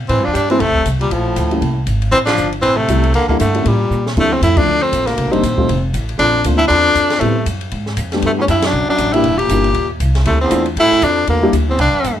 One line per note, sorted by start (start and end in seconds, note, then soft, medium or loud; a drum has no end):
0.09 0.18 A2 medium
0.09 0.25 E3 medium
0.09 0.26 C4 medium
0.09 kick soft
0.09 ride medium
0.18 0.26 G2 medium
0.24 0.34 E2 medium
0.24 0.33 F3 medium
0.24 0.35 D4 medium
0.33 0.59 G2 medium
0.33 0.47 G3 medium
0.33 0.49 D4 medium
0.33 kick soft
0.33 hi-hat pedal medium
0.33 ride medium
0.50 0.62 E3 medium
0.50 0.59 G3 medium
0.50 0.60 A3 medium
0.50 0.59 C4 medium
0.50 0.62 C4 medium
0.50 0.60 E4 medium
0.50 ride soft
0.60 0.71 E2 medium
0.60 0.86 C3 medium
0.60 0.86 A3 loud
0.60 kick soft
0.60 ride medium
0.70 0.77 C2 medium
0.75 0.85 A1 medium
0.75 kick medium
0.85 1.10 C2 medium
0.85 kick soft
0.85 hi-hat pedal medium
0.85 ride medium
1.00 1.13 A#2 medium
1.00 1.13 G3 medium
1.00 ride soft
1.10 1.35 A#1 medium
1.10 1.87 A2 medium
1.10 1.62 F3 medium
1.10 kick soft
1.10 ride medium
1.36 1.61 D2 medium
1.36 kick soft
1.36 hi-hat pedal medium
1.36 ride medium
1.51 1.61 G3 medium
1.51 1.61 A#3 medium
1.51 1.61 C#4 soft
1.51 1.61 E4 medium
1.51 ride soft
1.61 1.86 C2 medium
1.61 kick soft
1.61 ride medium
1.86 2.11 G#1 medium
1.86 kick soft
1.86 hi-hat pedal soft
1.86 ride medium
2.02 ride soft
2.11 2.37 A1 medium
2.11 2.18 E3 medium
2.11 2.19 C4 loud
2.11 kick soft
2.11 ride medium
2.26 2.50 F3 medium
2.26 2.50 D4 medium
2.26 snare medium
2.26 ride medium
2.37 2.63 G1 medium
2.37 hi-hat pedal medium
2.53 ride soft
2.62 2.88 A1 medium
2.62 2.78 E3 medium
2.62 2.78 C4 loud
2.62 kick soft
2.62 ride medium
2.77 3.14 C3 medium
2.77 3.14 A3 medium
2.88 3.13 C2 medium
2.88 3.02 G3 medium
2.88 3.03 A3 medium
2.88 3.03 C4 medium
2.88 3.03 E4 medium
2.88 kick soft
2.88 hi-hat pedal soft
2.88 ride medium
3.04 ride soft
3.14 3.39 E2 medium
3.14 3.28 D3 medium
3.14 3.28 A#3 medium
3.14 kick soft
3.14 ride medium
3.28 3.38 D3 medium
3.28 3.39 G3 medium
3.28 3.39 A#3 medium
3.28 3.39 D4 medium
3.28 3.39 E4 medium
3.28 kick medium
3.39 3.65 G2 medium
3.39 3.66 D3 medium
3.39 3.69 A3 medium
3.39 kick soft
3.39 hi-hat pedal medium
3.39 ride medium
3.55 3.64 G3 medium
3.55 3.64 A#3 medium
3.55 3.65 C#4 medium
3.55 3.65 E4 medium
3.55 ride soft
3.65 3.90 A2 medium
3.65 4.05 A#2 medium
3.65 4.07 G3 medium
3.65 kick soft
3.65 ride medium
3.90 4.15 A#2 medium
3.90 hi-hat pedal soft
4.06 snare medium
4.17 4.34 C2 medium
4.17 4.41 D2 medium
4.17 4.30 F3 medium
4.17 4.30 A3 medium
4.17 4.35 A3 loud
4.17 4.30 C4 medium
4.17 4.30 D4 medium
4.17 4.30 E4 medium
4.17 kick medium
4.17 crash medium
4.32 4.42 E2 medium
4.32 4.43 C4 medium
4.42 4.66 F2 medium
4.42 4.58 A2 medium
4.42 4.59 E4 medium
4.42 kick soft
4.42 hi-hat pedal medium
4.42 ride medium
4.57 4.82 F2 medium
4.57 4.66 F3 medium
4.57 4.66 A3 medium
4.57 4.66 C4 medium
4.57 4.66 D4 medium
4.57 4.84 D4 loud
4.57 4.66 E4 medium
4.57 kick medium
4.57 crash medium
4.66 4.91 D2 medium
4.82 5.09 F2 medium
4.82 5.08 C4 medium
4.92 5.17 A1 medium
4.92 kick soft
4.92 hi-hat pedal medium
4.92 ride medium
5.07 5.33 D2 medium
5.07 5.34 A#3 medium
5.07 snare soft
5.07 ride soft
5.17 5.26 C2 medium
5.17 kick soft
5.17 ride medium
5.26 5.34 A#1 medium
5.31 5.43 G1 medium
5.31 5.83 D#2 medium
5.31 5.41 G3 medium
5.31 5.41 A#3 medium
5.31 5.42 C4 medium
5.31 5.83 C4 medium
5.31 5.42 D4 medium
5.31 5.41 D#4 medium
5.31 ride soft
5.43 5.68 A#1 medium
5.43 kick soft
5.43 hi-hat pedal medium
5.43 ride medium
5.57 5.67 G3 medium
5.57 5.67 A3 medium
5.57 5.67 C4 medium
5.57 5.67 D#4 medium
5.57 5.68 F4 medium
5.57 kick medium
5.68 5.93 F1 medium
5.68 ride medium
5.93 6.18 A1 medium
5.93 kick soft
5.93 hi-hat pedal medium
5.93 ride medium
6.09 ride soft
6.18 6.44 A#1 medium
6.18 6.42 F2 medium
6.18 6.43 D4 loud
6.18 kick soft
6.18 ride medium
6.44 6.69 D2 medium
6.44 6.59 A3 medium
6.44 6.59 A#3 medium
6.44 6.59 C4 medium
6.44 6.59 D4 medium
6.44 6.59 F4 medium
6.44 kick soft
6.44 hi-hat pedal medium
6.44 ride medium
6.57 6.67 G2 medium
6.57 6.67 E4 loud
6.57 ride soft
6.68 6.95 E2 medium
6.68 7.21 F2 medium
6.68 7.22 D4 loud
6.68 kick soft
6.68 ride medium
6.95 7.20 F2 medium
6.95 kick soft
6.95 hi-hat pedal medium
6.95 ride medium
7.10 snare medium
7.10 ride soft
7.19 7.46 C2 medium
7.19 7.45 A2 medium
7.19 7.34 G3 medium
7.19 7.46 A3 medium
7.19 7.34 A3 medium
7.19 7.34 B3 medium
7.19 7.34 C4 soft
7.19 7.34 E4 medium
7.19 kick soft
7.19 ride medium
7.46 7.71 F#2 medium
7.46 kick soft
7.46 hi-hat pedal medium
7.46 ride medium
7.61 ride soft
7.71 7.97 G#2 medium
7.71 kick soft
7.71 ride medium
7.86 snare soft
7.97 8.22 F2 medium
7.97 kick soft
7.97 hi-hat pedal medium
7.97 ride medium
8.12 8.46 G3 medium
8.12 8.47 A3 medium
8.12 8.47 B3 medium
8.12 8.47 D4 medium
8.12 8.47 G4 medium
8.12 snare soft
8.12 ride soft
8.22 8.31 D2 medium
8.22 8.47 G2 medium
8.22 8.32 A3 medium
8.22 kick soft
8.22 ride medium
8.38 8.43 E2 medium
8.38 8.45 C#4 medium
8.48 8.72 F#2 medium
8.48 8.63 G2 medium
8.48 8.67 E4 medium
8.48 kick soft
8.48 hi-hat pedal medium
8.48 ride medium
8.62 8.88 F#2 medium
8.62 8.90 D4 medium
8.62 snare medium
8.62 ride medium
8.73 8.87 B1 medium
8.88 9.13 F#2 medium
8.88 9.15 D4 medium
8.88 muted upright bass stroke soft
8.98 9.23 A1 medium
8.98 kick soft
8.98 hi-hat pedal medium
8.98 ride medium
9.12 9.40 G2 medium
9.12 9.23 G3 medium
9.12 9.23 A#3 medium
9.12 9.23 D4 medium
9.12 9.39 E4 medium
9.12 9.24 E4 medium
9.12 9.24 G4 medium
9.12 ride soft
9.24 9.48 E1 medium
9.24 kick soft
9.24 ride medium
9.38 9.90 A#2 medium
9.38 9.89 G4 medium
9.38 ride medium
9.49 9.74 G1 medium
9.49 9.63 G3 medium
9.49 9.63 A#3 medium
9.49 9.63 D4 soft
9.49 9.63 E4 medium
9.49 9.63 G4 medium
9.49 kick soft
9.49 hi-hat pedal medium
9.49 ride medium
9.64 ride soft
9.74 9.99 D#2 medium
9.74 kick soft
9.74 ride medium
10.00 10.25 C2 loud
10.00 kick soft
10.00 hi-hat pedal medium
10.00 ride medium
10.15 snare soft
10.15 ride soft
10.25 10.39 C2 medium
10.25 10.50 D2 medium
10.25 10.40 A3 loud
10.25 kick soft
10.25 ride medium
10.41 10.65 E2 medium
10.41 10.64 C4 medium
10.50 10.76 E2 medium
10.50 10.64 A3 medium
10.50 10.64 C4 medium
10.50 10.64 D4 medium
10.50 10.64 E4 medium
10.50 10.64 F4 medium
10.50 kick soft
10.50 hi-hat pedal medium
10.50 ride medium
10.66 ride soft
10.76 10.90 G2 medium
10.76 11.05 A2 medium
10.76 11.06 E4 loud
10.76 kick soft
10.76 ride medium
10.92 muted upright bass stroke soft
10.92 snare soft
11.02 11.27 F2 medium
11.02 11.28 D4 loud
11.02 kick soft
11.02 hi-hat pedal medium
11.02 ride medium
11.27 11.51 D2 medium
11.27 11.52 E2 medium
11.27 11.52 A#3 medium
11.27 kick soft
11.27 ride medium
11.42 11.52 G3 medium
11.42 11.52 A#3 medium
11.42 11.52 D4 medium
11.42 11.52 E4 medium
11.42 11.52 G4 medium
11.52 11.77 D2 medium
11.52 kick soft
11.52 hi-hat pedal medium
11.52 ride medium
11.68 11.78 E2 medium
11.68 11.79 C4 medium
11.78 11.92 C2 medium
11.78 12.16 G2 medium
11.78 12.17 D4 medium
11.78 kick soft
11.78 ride medium
11.93 muted upright bass stroke soft
12.04 12.20 G2 medium
12.04 kick soft
12.04 hi-hat pedal medium
12.04 ride medium